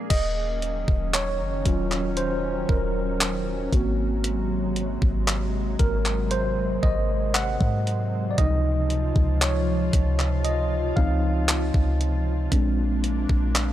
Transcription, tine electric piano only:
0.10 D#5
1.13 C#5
1.66 F#3 C#4 F4
2.17 C5
2.69 A#4
3.73 A#3 C4 F#4
5.80 A#4
6.31 C5
6.83 D#5
7.34 F#5
8.31 D5
8.38 C3 F3 D#4 D#5
9.41 C#5
10.45 D#5
10.96 F3 C4 D#4 F5
12.52 G#3 C4 D4

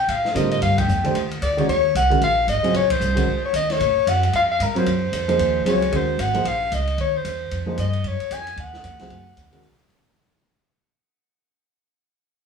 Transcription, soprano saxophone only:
Already playing: G5
0.09 F5
0.35 D#5
0.52 D#5
0.62 F5
0.78 G5
1.42 D5
1.69 C#5
1.97 F#5
2.24 F5
2.49 D#5
2.76 C#5
2.91 C5
3.46 C#5
3.56 D#5
3.72 C#5
4.09 F#5
4.25 F#5
4.35 F5
4.51 F5
4.63 A#4
4.78 C5
5.69 C#5
5.96 C5
6.21 F#5
6.47 F5
6.74 D#5
7.01 C#5
7.17 C5
7.80 D#5
8.07 C#5
8.33 G#5
8.60 F#5

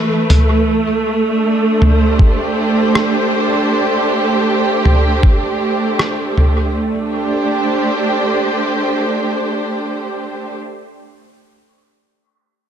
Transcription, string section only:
Already playing: E3 A3 B4
1.30 D4
1.76 C5
2.06 G4
6.75 A3
6.88 D4
7.01 G4
7.10 C5

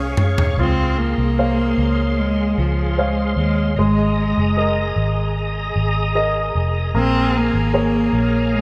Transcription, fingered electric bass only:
Already playing: C2
0.58 C#2
1.18 C2
1.78 C#2
2.58 C#2
3.36 D#2
3.77 G#1
4.37 F#1
4.96 G#1
5.76 G#1
6.55 F1
6.94 A#1
7.53 G#1
8.13 A#1

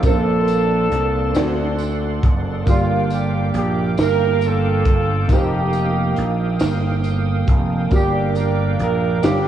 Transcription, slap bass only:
0.03 A#1
0.91 C2
1.36 D2
2.23 F#1
2.67 G1
3.54 A#1
3.98 G1
4.85 G1
5.29 F1
6.18 A#1
6.61 G1
7.48 F1
7.91 G1
8.80 A#1
9.24 G1

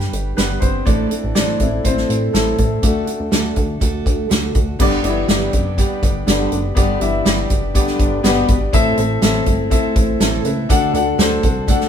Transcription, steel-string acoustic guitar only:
Already playing: G3 D4 G4 B4
0.36 G3 D4 G4 B4
0.61 D4 G4 B4
0.85 A2 E3 A3 C4 E4 A4
1.10 A3 C4 E4 A4
1.35 A2 E3 A3 C4 E4 A4
1.59 A3 C4 E4 A4
1.83 A3 C4 E4 A4
2.33 A2 E3 A3 C4 E4 A4
2.57 A3 C4 E4 A4
2.82 D3 A3 D4 F#4 A4
3.06 D4 F#4 A4
3.31 D3 A3 D4 F#4 A4
3.56 D4 F#4 A4
3.80 A3 D4 F#4 A4
4.29 D3 A3 D4 F#4 A4
4.53 D4 F#4 A4
4.79 G3 D4 G4 B4
5.03 G4 B4
5.28 G3 D4 G4 B4
5.53 D4 G4 B4
5.77 G3 D4 G4 B4
6.27 G3 D4 G4 B4
6.51 D4 G4 B4
6.76 G3 D4 G4 B4
7.00 D4 G4 B4
7.25 G3 D4 G4 B4
7.50 D4 G4 B4
7.74 G3 D4 G4 B4
8.24 G3 D4 G4 B4
8.48 D4 G4 B4
8.73 A2 E3 A3 C4 E4 A4
8.98 A3 C4 E4 A4
9.22 A2 E3 A3 C4 E4 A4
9.46 A3 C4 E4 A4
9.71 A3 C4 E4 A4
10.20 A2 E3 A3 C4 E4 A4
10.44 A3 C4 E4 A4
10.69 D3 A3 D4 F#4 A4
10.94 D4 F#4 A4
11.18 D3 A3 D4 F#4 A4
11.43 D4 F#4 A4
11.67 A3 D4 F#4 A4

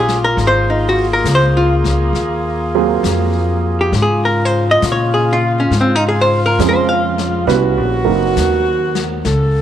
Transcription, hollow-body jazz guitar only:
0.00 G#4
0.24 A#4
0.47 C5
0.70 D#4
0.89 F#4
1.13 A#4
1.35 C5
1.57 F4
3.81 G4
4.02 G#4
4.25 A#4
4.45 C5
4.71 D#5
4.92 C#5
5.14 G#4
5.33 F4
5.60 C#4
5.81 C4
5.95 D#4
6.09 G#4
6.21 C5
6.46 A#4
6.69 C5
6.89 F5

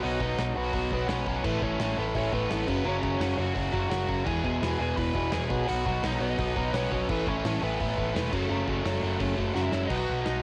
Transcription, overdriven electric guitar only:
0.03 B2 F#3 B3
0.21 B2 F#3 B3
0.38 B2 F#3 B3
0.56 B2 F#3 B3
0.74 B2 F#3 B3
0.93 B2 F#3 B3
1.09 B2 F#3 B3
1.28 B2 F#3 B3
1.44 A2 E3 A3
1.62 A2 E3 A3
1.80 A2 E3 A3
1.98 A2 E3 A3
2.15 A2 E3 A3
2.32 A2 E3 A3
2.50 A2 E3 A3
2.67 F#2 C#3 F#3
2.85 F#2 C#3 F#3
3.02 F#2 C#3 F#3
3.20 F#2 C#3 F#3
3.37 F#2 C#3 F#3
3.54 F#2 C#3 F#3
3.72 F#2 C#3 F#3
3.90 F#2 C#3 F#3
4.08 F#2 C#3 F#3
4.25 E2 B2 E3
4.44 E2 B2 E3
4.62 E2 B2 E3
4.79 E2 B2 E3
4.97 E2 B2 E3
5.15 E2 B2 E3
5.32 E2 B2 E3
5.50 B2 F#3 B3
5.68 B2 F#3 B3
5.86 B2 F#3 B3
6.03 B2 F#3 B3
6.21 B2 F#3 B3
6.39 B2 F#3 B3
6.56 B2 F#3 B3
6.74 B2 F#3 B3
6.92 B2 F#3 B3
7.10 A2 E3 A3
7.28 A2 E3 A3
7.46 A2 E3 A3
7.63 A2 E3 A3
7.80 A2 E3 A3
7.98 A2 E3 A3
8.14 A2 E3 A3
8.32 F#2 C#3 F#3
8.49 F#2 C#3 F#3
8.68 F#2 C#3 F#3
8.84 F#2 C#3 F#3
9.02 F#2 C#3 F#3
9.20 F#2 C#3 F#3
9.36 F#2 C#3 F#3
9.55 F#2 C#3 F#3
9.72 F#2 C#3 F#3
9.88 B2 F#3 B3

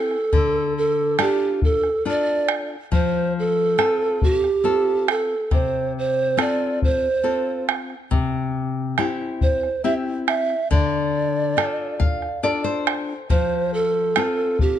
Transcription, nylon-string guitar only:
Already playing: C4 E4 G4
0.33 D3
1.19 D4 F4 A4
2.05 D4 F4 A4
2.92 F3
3.78 C4 F4 A4
4.64 C4 F4 A4
5.51 C3
6.37 C4 F4 A4
7.23 C4 F4 A4
8.11 C3
8.98 C4 E4 G4
9.84 C4 E4 G4
10.71 D3
11.57 D4 F4 A4
12.00 F5
12.43 D4 F4 A4 D5
12.64 C5
13.30 F3
14.16 C4 F4 A4

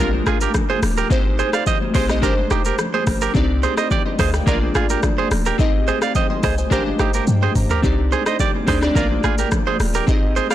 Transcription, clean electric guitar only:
0.27 F4 G#4
0.42 G4 A#4
0.70 G#4 C5
0.98 G4 A#4
1.39 G#4 C5
1.54 D5 F5
1.67 C5 D#5
1.95 G#4 C5
2.23 G4 A#4
2.51 D#4 G4
2.66 G4 A#4
2.94 G#4 C5
3.22 G4 A#4
3.63 G#4 C5
3.78 C5 D#5
3.91 G4 D5
4.20 G#4 C5
4.48 F4 A#4
4.76 F4 G#4
4.90 G4 A#4
5.18 G#4 C5
5.46 G4 A#4
5.88 G#4 C5
6.02 D5 F5
6.16 C5 D#5
6.44 G#4 C5
6.72 G4 A#4
7.00 D#4 G4
7.15 G4 A#4
7.43 G#4 C5
7.71 G4 A#4
8.12 G#4 C5
8.27 C5 D#5
8.40 G4 D5
8.68 G#4 C5
8.96 F4 A#4
9.24 F4 G#4
9.39 G4 A#4
9.67 G#4 C5
9.95 G4 A#4
10.36 G#4 C5
10.51 D5 F5

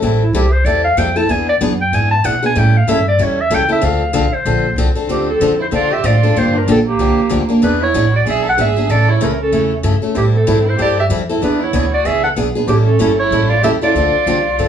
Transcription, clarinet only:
0.22 E4
0.35 G4
0.53 C5
0.65 D5
0.85 F5
0.98 G5
1.17 A5
1.31 G#5
1.49 D5
1.81 G5
1.95 G#5
2.11 A5
2.25 F#5
2.46 G#5
2.59 G5
2.78 F5
2.89 E5
3.08 D5
3.23 C#5
3.41 E5
3.55 G5
3.72 E5
3.85 F5
4.34 C5
5.10 G4
5.30 A4
5.62 C5
5.75 D5
5.94 E5
6.06 D5
6.39 C5
6.58 A#4
6.71 A4
6.89 G4
7.63 B4
7.83 C#5
8.16 D5
8.30 E5
8.49 F#5
8.61 E5
8.91 D5
9.11 C#5
9.24 A#4
9.43 A4
10.18 G4
10.36 A4
10.70 C5
10.82 D5
11.00 E5
11.44 B4
11.64 C#5
11.94 D5
12.07 E5
12.24 F#5
12.69 G4
12.86 A4
13.20 C#5
13.50 D5
13.64 E5
13.84 D5

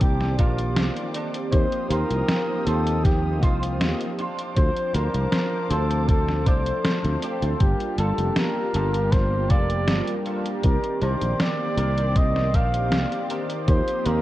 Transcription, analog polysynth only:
Already playing: D#3 A#3 C4 G4 D5
1.51 F3 A#3 C4 D#4 G4
2.65 F3 A#3 C4 D#4 G4
4.55 F3 C4 D4 C5
5.68 F3 A3 C4 D4 A4
7.59 G3 A#3 D4 F4 G4
8.73 G3 A#3 D4 F4 A#4
10.62 D#3 A#3 C4 G4 D5
11.77 D#3 A#3 C4 G4 C5
13.66 F3 A#3 C4 D#4 G4

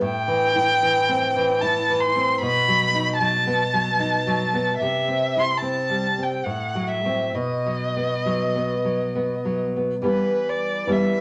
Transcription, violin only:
0.04 G5
1.61 A5
2.00 C6
2.41 B5
3.20 A5
4.78 E5
5.40 C6
5.58 A5
6.23 G5
6.44 F#5
6.88 E5
7.35 D#5
10.07 B4
10.50 D5
10.92 E5

